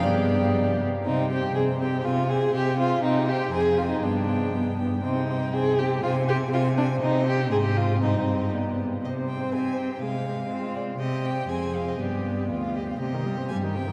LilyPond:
<<
  \new Staff \with { instrumentName = "Violin" } { \time 2/4 \key c \minor \tempo 4 = 121 d''4. r8 | g''8 g''8 g''8 g''8 | aes''8 aes''8 aes''8 aes''8 | g''8 g''8 aes''8 aes''8 |
g''8 g''8 g''8 g''8 | g''8 g''8 g''8 g''8 | aes''8 aes''8 aes''8 aes''8 | ees''4 ees''4 |
ees''4 d''8 r8 | ees''8 g''8 aes''8 g''8 | f''4. d''8 | ees''8 g''8 aes''8 f''16 ees''16 |
d''4~ d''16 f''16 ees''16 f''16 | ees''4 aes''8 g''8 | }
  \new Staff \with { instrumentName = "Violin" } { \time 2/4 \key c \minor g'4. r8 | ees'8 g'8 aes'8 g'8 | f'8 aes'8 g'8 f'8 | ees'8 g'8 aes'8 f'16 ees'16 |
d'4. r8 | ees'4 aes'8 g'8 | f'8 g'8 f'8 d'8 | ees'8 g'8 aes'16 g'16 f'8 |
ees'4 r4 | c''4 g'4 | aes'8 aes'8 f'4 | g'4 aes'4 |
g'4 f'8 g'8 | g'2 | }
  \new Staff \with { instrumentName = "Viola" } { \time 2/4 \key c \minor b4. r8 | c'8 c'8 c'8 c'8 | c'8 c'8 c'8 c'8 | c'8 c'8 c'8 c'8 |
b8 b8 b8 b8 | c'8 c'8 c'8 c'8 | c'8 c'8 c'8 c'8 | c'4 c'4 |
c'4 b8 r8 | c'2 | aes2 | c'4 c'4 |
b4. r8 | c16 ees16 g16 c'16 g16 ees16 c16 ees16 | }
  \new Staff \with { instrumentName = "Cello" } { \clef bass \time 2/4 \key c \minor g,4. r8 | c4 c4 | c4 c4 | c4 f,4 |
g,4 g,4 | c4 c4 | c4 c4 | c4 aes,4 |
g,4. r8 | c4 c'4 | c4 c'4 | c4 f,4 |
g,4 d,4 | c4 g,4 | }
>>